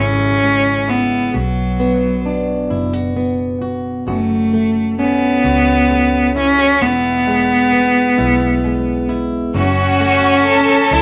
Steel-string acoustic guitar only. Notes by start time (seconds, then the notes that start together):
Already playing: C#3 G#3 C#4 E4
0.42 G#3
0.88 E4
1.33 B2 F#4
1.80 B3
2.26 D4
2.70 E4
2.93 F#4
3.16 B3
3.62 F#4
4.07 F#2 F#4
4.54 A3
4.99 C#4
5.45 F#4
5.91 A3
6.36 E4
6.59 F#4
6.81 E2 E4
7.27 G#3
7.72 B3
8.18 E4
8.64 G#3
9.09 E4
9.54 F#2
10.00 A3
10.46 C#4
10.91 F#3